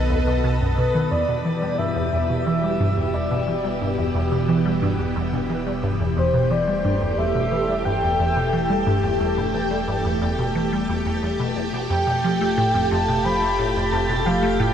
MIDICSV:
0, 0, Header, 1, 6, 480
1, 0, Start_track
1, 0, Tempo, 674157
1, 794, Time_signature, 4, 2, 24, 8
1, 10493, End_track
2, 0, Start_track
2, 0, Title_t, "Soft synth lead"
2, 0, Program_c, 0, 80
2, 556, Note_on_c, 0, 71, 91
2, 791, Note_on_c, 0, 74, 105
2, 801, Note_off_c, 0, 71, 0
2, 1268, Note_on_c, 0, 76, 111
2, 1278, Note_off_c, 0, 74, 0
2, 1745, Note_off_c, 0, 76, 0
2, 1749, Note_on_c, 0, 76, 108
2, 2187, Note_off_c, 0, 76, 0
2, 2187, Note_on_c, 0, 76, 66
2, 2234, Note_on_c, 0, 74, 89
2, 2244, Note_off_c, 0, 76, 0
2, 2594, Note_off_c, 0, 74, 0
2, 4396, Note_on_c, 0, 72, 86
2, 4633, Note_on_c, 0, 74, 98
2, 4644, Note_off_c, 0, 72, 0
2, 5111, Note_on_c, 0, 76, 98
2, 5121, Note_off_c, 0, 74, 0
2, 5588, Note_on_c, 0, 79, 112
2, 5598, Note_off_c, 0, 76, 0
2, 6311, Note_off_c, 0, 79, 0
2, 8471, Note_on_c, 0, 79, 110
2, 9164, Note_off_c, 0, 79, 0
2, 9194, Note_on_c, 0, 81, 108
2, 9430, Note_on_c, 0, 83, 117
2, 9441, Note_off_c, 0, 81, 0
2, 9912, Note_on_c, 0, 81, 108
2, 9923, Note_off_c, 0, 83, 0
2, 10150, Note_on_c, 0, 77, 102
2, 10160, Note_off_c, 0, 81, 0
2, 10392, Note_on_c, 0, 79, 112
2, 10403, Note_off_c, 0, 77, 0
2, 10493, Note_off_c, 0, 79, 0
2, 10493, End_track
3, 0, Start_track
3, 0, Title_t, "Synth texture"
3, 0, Program_c, 1, 99
3, 0, Note_on_c, 1, 71, 83
3, 791, Note_on_c, 1, 67, 88
3, 803, Note_off_c, 1, 71, 0
3, 10493, Note_off_c, 1, 67, 0
3, 10493, End_track
4, 0, Start_track
4, 0, Title_t, "String machine"
4, 0, Program_c, 2, 50
4, 0, Note_on_c, 2, 59, 85
4, 0, Note_on_c, 2, 69, 77
4, 0, Note_on_c, 2, 75, 91
4, 773, Note_off_c, 2, 59, 0
4, 773, Note_off_c, 2, 69, 0
4, 773, Note_off_c, 2, 75, 0
4, 790, Note_on_c, 2, 47, 76
4, 790, Note_on_c, 2, 67, 89
4, 792, Note_on_c, 2, 52, 85
4, 4603, Note_off_c, 2, 47, 0
4, 4631, Note_on_c, 2, 57, 77
4, 8444, Note_off_c, 2, 52, 0
4, 8475, Note_on_c, 2, 65, 75
4, 10493, Note_off_c, 2, 57, 0
4, 10493, Note_off_c, 2, 65, 0
4, 10493, Note_off_c, 2, 67, 0
4, 10493, End_track
5, 0, Start_track
5, 0, Title_t, "Synth arpeggio sound"
5, 0, Program_c, 3, 84
5, 73, Note_on_c, 3, 39, 94
5, 121, Note_off_c, 3, 39, 0
5, 192, Note_on_c, 3, 47, 73
5, 241, Note_off_c, 3, 47, 0
5, 313, Note_on_c, 3, 47, 92
5, 394, Note_off_c, 3, 47, 0
5, 435, Note_on_c, 3, 42, 75
5, 514, Note_off_c, 3, 42, 0
5, 554, Note_on_c, 3, 47, 74
5, 634, Note_off_c, 3, 47, 0
5, 673, Note_on_c, 3, 51, 77
5, 788, Note_off_c, 3, 51, 0
5, 792, Note_on_c, 3, 40, 97
5, 873, Note_off_c, 3, 40, 0
5, 913, Note_on_c, 3, 47, 73
5, 994, Note_off_c, 3, 47, 0
5, 1033, Note_on_c, 3, 52, 75
5, 1114, Note_off_c, 3, 52, 0
5, 1154, Note_on_c, 3, 55, 73
5, 1268, Note_off_c, 3, 55, 0
5, 1275, Note_on_c, 3, 43, 93
5, 1323, Note_off_c, 3, 43, 0
5, 1396, Note_on_c, 3, 40, 75
5, 1443, Note_off_c, 3, 40, 0
5, 1516, Note_on_c, 3, 40, 98
5, 1595, Note_off_c, 3, 40, 0
5, 1636, Note_on_c, 3, 47, 72
5, 1715, Note_off_c, 3, 47, 0
5, 1756, Note_on_c, 3, 52, 82
5, 1835, Note_off_c, 3, 52, 0
5, 1875, Note_on_c, 3, 55, 73
5, 1989, Note_off_c, 3, 55, 0
5, 1995, Note_on_c, 3, 43, 96
5, 2043, Note_off_c, 3, 43, 0
5, 2115, Note_on_c, 3, 40, 73
5, 2163, Note_off_c, 3, 40, 0
5, 2234, Note_on_c, 3, 40, 95
5, 2314, Note_off_c, 3, 40, 0
5, 2356, Note_on_c, 3, 47, 78
5, 2435, Note_off_c, 3, 47, 0
5, 2474, Note_on_c, 3, 52, 76
5, 2554, Note_off_c, 3, 52, 0
5, 2596, Note_on_c, 3, 55, 75
5, 2709, Note_off_c, 3, 55, 0
5, 2715, Note_on_c, 3, 43, 98
5, 2763, Note_off_c, 3, 43, 0
5, 2833, Note_on_c, 3, 40, 75
5, 2882, Note_off_c, 3, 40, 0
5, 2953, Note_on_c, 3, 40, 98
5, 3034, Note_off_c, 3, 40, 0
5, 3074, Note_on_c, 3, 47, 78
5, 3154, Note_off_c, 3, 47, 0
5, 3193, Note_on_c, 3, 52, 80
5, 3274, Note_off_c, 3, 52, 0
5, 3315, Note_on_c, 3, 55, 77
5, 3428, Note_off_c, 3, 55, 0
5, 3433, Note_on_c, 3, 43, 103
5, 3482, Note_off_c, 3, 43, 0
5, 3553, Note_on_c, 3, 40, 73
5, 3601, Note_off_c, 3, 40, 0
5, 3673, Note_on_c, 3, 40, 97
5, 3754, Note_off_c, 3, 40, 0
5, 3794, Note_on_c, 3, 47, 73
5, 3874, Note_off_c, 3, 47, 0
5, 3913, Note_on_c, 3, 52, 74
5, 3994, Note_off_c, 3, 52, 0
5, 4035, Note_on_c, 3, 55, 75
5, 4148, Note_off_c, 3, 55, 0
5, 4153, Note_on_c, 3, 43, 95
5, 4201, Note_off_c, 3, 43, 0
5, 4272, Note_on_c, 3, 40, 78
5, 4321, Note_off_c, 3, 40, 0
5, 4392, Note_on_c, 3, 40, 100
5, 4473, Note_off_c, 3, 40, 0
5, 4512, Note_on_c, 3, 47, 78
5, 4593, Note_off_c, 3, 47, 0
5, 4633, Note_on_c, 3, 52, 79
5, 4714, Note_off_c, 3, 52, 0
5, 4752, Note_on_c, 3, 55, 75
5, 4867, Note_off_c, 3, 55, 0
5, 4874, Note_on_c, 3, 43, 101
5, 4922, Note_off_c, 3, 43, 0
5, 4994, Note_on_c, 3, 40, 79
5, 5042, Note_off_c, 3, 40, 0
5, 5114, Note_on_c, 3, 40, 98
5, 5194, Note_off_c, 3, 40, 0
5, 5235, Note_on_c, 3, 47, 77
5, 5314, Note_off_c, 3, 47, 0
5, 5354, Note_on_c, 3, 52, 79
5, 5434, Note_off_c, 3, 52, 0
5, 5475, Note_on_c, 3, 55, 76
5, 5588, Note_off_c, 3, 55, 0
5, 5596, Note_on_c, 3, 43, 99
5, 5643, Note_off_c, 3, 43, 0
5, 5716, Note_on_c, 3, 40, 74
5, 5763, Note_off_c, 3, 40, 0
5, 5836, Note_on_c, 3, 40, 96
5, 5915, Note_off_c, 3, 40, 0
5, 5955, Note_on_c, 3, 47, 76
5, 6034, Note_off_c, 3, 47, 0
5, 6074, Note_on_c, 3, 52, 81
5, 6154, Note_off_c, 3, 52, 0
5, 6192, Note_on_c, 3, 55, 80
5, 6307, Note_off_c, 3, 55, 0
5, 6313, Note_on_c, 3, 43, 98
5, 6361, Note_off_c, 3, 43, 0
5, 6432, Note_on_c, 3, 40, 74
5, 6481, Note_off_c, 3, 40, 0
5, 6551, Note_on_c, 3, 40, 95
5, 6633, Note_off_c, 3, 40, 0
5, 6675, Note_on_c, 3, 47, 76
5, 6754, Note_off_c, 3, 47, 0
5, 6794, Note_on_c, 3, 52, 74
5, 6874, Note_off_c, 3, 52, 0
5, 6913, Note_on_c, 3, 55, 79
5, 7027, Note_off_c, 3, 55, 0
5, 7033, Note_on_c, 3, 43, 99
5, 7081, Note_off_c, 3, 43, 0
5, 7154, Note_on_c, 3, 40, 78
5, 7202, Note_off_c, 3, 40, 0
5, 7275, Note_on_c, 3, 40, 98
5, 7355, Note_off_c, 3, 40, 0
5, 7396, Note_on_c, 3, 47, 73
5, 7475, Note_off_c, 3, 47, 0
5, 7515, Note_on_c, 3, 52, 81
5, 7594, Note_off_c, 3, 52, 0
5, 7635, Note_on_c, 3, 55, 74
5, 7749, Note_off_c, 3, 55, 0
5, 7754, Note_on_c, 3, 40, 73
5, 7802, Note_off_c, 3, 40, 0
5, 7873, Note_on_c, 3, 40, 75
5, 7953, Note_off_c, 3, 40, 0
5, 7993, Note_on_c, 3, 40, 82
5, 8042, Note_off_c, 3, 40, 0
5, 8114, Note_on_c, 3, 47, 100
5, 8228, Note_off_c, 3, 47, 0
5, 8232, Note_on_c, 3, 40, 78
5, 8281, Note_off_c, 3, 40, 0
5, 8352, Note_on_c, 3, 47, 101
5, 8401, Note_off_c, 3, 47, 0
5, 8472, Note_on_c, 3, 41, 101
5, 8553, Note_off_c, 3, 41, 0
5, 8593, Note_on_c, 3, 47, 77
5, 8674, Note_off_c, 3, 47, 0
5, 8715, Note_on_c, 3, 53, 79
5, 8795, Note_off_c, 3, 53, 0
5, 8836, Note_on_c, 3, 57, 78
5, 8949, Note_off_c, 3, 57, 0
5, 8954, Note_on_c, 3, 45, 95
5, 9002, Note_off_c, 3, 45, 0
5, 9074, Note_on_c, 3, 41, 79
5, 9122, Note_off_c, 3, 41, 0
5, 9193, Note_on_c, 3, 41, 103
5, 9274, Note_off_c, 3, 41, 0
5, 9316, Note_on_c, 3, 47, 73
5, 9395, Note_off_c, 3, 47, 0
5, 9435, Note_on_c, 3, 53, 79
5, 9515, Note_off_c, 3, 53, 0
5, 9556, Note_on_c, 3, 57, 76
5, 9669, Note_off_c, 3, 57, 0
5, 9675, Note_on_c, 3, 45, 99
5, 9723, Note_off_c, 3, 45, 0
5, 9795, Note_on_c, 3, 41, 73
5, 9843, Note_off_c, 3, 41, 0
5, 9913, Note_on_c, 3, 41, 99
5, 9994, Note_off_c, 3, 41, 0
5, 10034, Note_on_c, 3, 47, 77
5, 10114, Note_off_c, 3, 47, 0
5, 10155, Note_on_c, 3, 53, 78
5, 10234, Note_off_c, 3, 53, 0
5, 10272, Note_on_c, 3, 57, 78
5, 10387, Note_off_c, 3, 57, 0
5, 10392, Note_on_c, 3, 45, 97
5, 10441, Note_off_c, 3, 45, 0
5, 10493, End_track
6, 0, Start_track
6, 0, Title_t, "Sub bass"
6, 0, Program_c, 4, 38
6, 0, Note_on_c, 4, 35, 89
6, 770, Note_off_c, 4, 35, 0
6, 794, Note_on_c, 4, 28, 89
6, 8450, Note_off_c, 4, 28, 0
6, 8473, Note_on_c, 4, 29, 90
6, 10493, Note_off_c, 4, 29, 0
6, 10493, End_track
0, 0, End_of_file